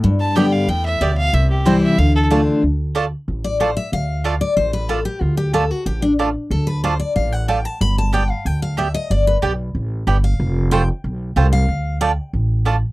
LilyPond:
<<
  \new Staff \with { instrumentName = "Fiddle" } { \time 4/4 \key d \dorian \tempo 4 = 185 r8 a''8 g''8 f''8 g''8 e''8 d''8 f''8 | e''8 g'8 c''8 e''8 f''8 a'8 r4 | r1 | r1 |
r1 | r1 | r1 | r1 |
r1 | r1 | }
  \new Staff \with { instrumentName = "Steel-string acoustic guitar" } { \time 4/4 \key d \dorian << { r4 <d g b g'>4 r2 | r4 <e g c' e'>4 r4 <d a d' f'>4 | r2 r8 d''8 c''8 e''8 | f''4. d''8 c''8 b'8 a'8 g'8 |
f'8 g'8 a'8 fis'8 g'8 d'8 r4 | a'8 b'8 c''8 d''8 f''8 fis''8 g''8 a''8 | b''8 a''8 g''8 f''8 g''8 f''8 e''8 ees''8 | d''8 b'8 r2 r8 f''8~ |
f''4 g''8 r2 f''8~ | f''4 g''8 r2 r8 | } \\ { g,2 a,4 b,4 | c2 d2 | r1 | r1 |
r1 | r1 | r1 | r1 |
r1 | r1 | } >> }
  \new Staff \with { instrumentName = "Mandolin" } { \time 4/4 \key d \dorian r4 <b g' d'' g''>8 r4. <b g' d'' g''>8 r8 | r4 <c' e' c'' g''>8 r4. <a f' d'' a''>8 r8 | r4 <a f' d'' a''>8 r4. <a f' d'' a''>8 r8 | r4 <a f' d'' a''>8 r4. <a f' d'' a''>8 r8 |
r4 <a f' d'' a''>8 r4. <a f' d'' a''>8 r8 | r4 <a f' d'' a''>8 r4. <a f' d'' a''>8 r8 | r4 <b g' d'' g''>8 r4. <b g' d'' g''>8 r8 | r4 <b g' d'' g''>8 r4. <b g' d'' g''>8 r8 |
r4 <a f' c'' g''>8 r4. <a f' c'' g''>8 r8 | r4 <a f' d'' a''>8 r4. <a f' d'' a''>8 r8 | }
  \new Staff \with { instrumentName = "Upright bass" } { \clef bass \time 4/4 \key d \dorian g,2 e,4 d,4 | c,2 d,2 | d,2 a,,2 | d,2 a,,2 |
d,2 a,,2 | d,2 a,,2 | g,,2 d,2 | g,,4 b,,4 a,,4 g,,4 |
f,,2 b,,4 c,4 | d,2 a,,2 | }
>>